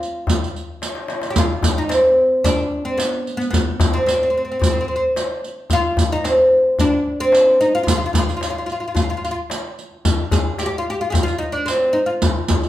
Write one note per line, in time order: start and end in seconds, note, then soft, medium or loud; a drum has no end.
0.00 0.76 F4 medium
0.00 riq soft
0.27 riq medium
0.27 darbuka dum medium
0.41 riq soft
0.41 darbuka ka soft
0.56 riq soft
0.82 riq soft
0.82 darbuka tek medium
0.95 darbuka ka medium
1.08 riq soft
1.08 darbuka tek medium
1.22 riq soft
1.22 darbuka ka medium
1.30 1.37 G4 medium
1.36 1.78 F4 medium
1.36 riq medium
1.36 darbuka dum medium
1.63 riq medium
1.63 darbuka dum medium
1.77 1.92 D#4 medium
1.77 darbuka ka soft
1.89 2.46 C4 medium
1.89 riq soft
1.89 darbuka tek medium
2.44 2.85 D4 loud
2.44 riq medium
2.44 darbuka dum medium
2.57 darbuka ka soft
2.71 darbuka ka soft
2.85 2.99 C4 medium
2.98 3.36 B3 medium
2.98 riq medium
2.98 darbuka tek medium
3.26 riq soft
3.26 darbuka ka soft
3.37 3.49 B3 medium
3.41 riq soft
3.50 3.94 B3 medium
3.50 riq medium
3.50 darbuka dum medium
3.80 riq medium
3.80 darbuka dum medium
3.93 4.05 C4 medium
3.93 darbuka ka soft
4.06 4.12 C4 medium
4.06 riq soft
4.06 darbuka tek medium
4.14 4.21 C4 soft
4.23 4.29 C4 medium
4.30 4.36 C4 soft
4.37 4.43 C4 soft
4.45 4.50 C4 soft
4.52 4.58 C4 soft
4.59 4.65 C4 soft
4.59 darbuka dum medium
4.64 4.72 C4 medium
4.64 riq medium
4.73 4.79 C4 soft
4.73 darbuka ka soft
4.81 4.87 C4 medium
4.88 4.95 C4 medium
4.88 darbuka ka soft
4.96 5.04 C4 medium
5.16 riq soft
5.16 darbuka tek medium
5.44 riq soft
5.44 darbuka ka soft
5.70 6.12 F4 loud
5.70 riq medium
5.70 darbuka dum medium
5.97 riq medium
5.97 darbuka dum medium
6.10 6.26 D#4 medium
6.10 darbuka ka soft
6.24 6.81 C4 medium
6.24 riq soft
6.24 darbuka tek medium
6.79 7.20 D4 loud
6.79 riq medium
6.79 darbuka dum medium
6.92 darbuka ka soft
7.06 darbuka ka soft
7.20 7.60 C4 medium
7.32 riq soft
7.32 darbuka tek medium
7.60 7.74 D#4 medium
7.60 riq soft
7.60 darbuka ka soft
7.75 7.82 F4 medium
7.83 7.88 F4 medium
7.83 darbuka dum medium
7.88 7.96 F4 medium
7.88 riq medium
7.97 8.04 F4 medium
8.06 8.12 F4 medium
8.13 8.18 F4 soft
8.13 riq medium
8.13 darbuka dum medium
8.19 8.26 F4 medium
8.27 8.35 F4 medium
8.27 riq soft
8.27 darbuka ka soft
8.37 8.42 F4 medium
8.41 8.49 F4 medium
8.41 riq soft
8.41 darbuka tek medium
8.50 8.57 F4 medium
8.58 8.65 F4 soft
8.66 8.71 F4 medium
8.66 riq soft
8.66 darbuka ka soft
8.72 8.79 F4 medium
8.80 8.86 F4 medium
8.88 8.93 F4 medium
8.95 9.01 F4 medium
8.95 riq medium
8.95 darbuka dum medium
9.02 9.09 F4 medium
9.10 9.16 F4 medium
9.17 9.23 F4 soft
9.25 9.30 F4 medium
9.25 riq soft
9.31 9.38 F4 medium
9.50 riq medium
9.50 darbuka tek medium
9.79 riq soft
9.91 darbuka ka soft
10.05 riq medium
10.05 darbuka dum medium
10.31 10.58 G#4 loud
10.31 riq medium
10.31 darbuka dum loud
10.58 10.65 G4 medium
10.58 riq soft
10.58 darbuka tek medium
10.66 10.78 G4 medium
10.78 10.90 F4 medium
10.90 11.00 G4 medium
11.01 11.10 F4 medium
11.10 11.23 G4 medium
11.10 11.14 G#4 medium
11.10 darbuka dum medium
11.15 riq medium
11.23 11.38 F4 medium
11.28 riq soft
11.38 11.54 D#4 medium
11.52 11.68 D4 medium
11.66 11.96 C4 medium
11.66 riq soft
11.66 darbuka tek medium
11.93 12.06 D#4 medium
12.06 12.69 F4 medium
12.06 darbuka ka soft
12.22 riq medium
12.22 darbuka dum medium
12.48 riq medium
12.48 darbuka dum medium
12.63 riq soft